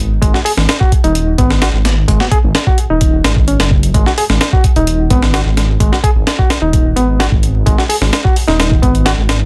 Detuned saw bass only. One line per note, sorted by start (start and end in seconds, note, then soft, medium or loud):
0.00 0.19 G#1 loud
0.22 0.32 G#1 loud
0.57 0.66 G#1 loud
1.04 1.35 D#1 medium
1.38 1.70 G#1 loud
1.73 2.05 G#1 loud
2.08 2.18 G#1 loud
2.44 2.53 G#1 loud
2.90 3.21 D#1 medium
3.25 3.56 G#1 loud
3.60 3.91 F#1 medium
3.94 4.04 G#1 loud
4.29 4.39 G#1 loud
4.76 5.07 D#1 medium
5.10 5.42 G#1 loud
5.46 5.77 G#1 loud
5.80 5.90 G#1 loud
6.15 6.25 G#1 loud
6.62 6.93 D#1 medium
6.96 7.28 G#1 loud
7.32 7.63 G#1 loud
7.66 7.76 G#1 loud
8.01 8.10 G#1 loud
8.48 8.79 D#1 medium
8.83 9.14 G#1 loud
9.18 9.45 G#1 loud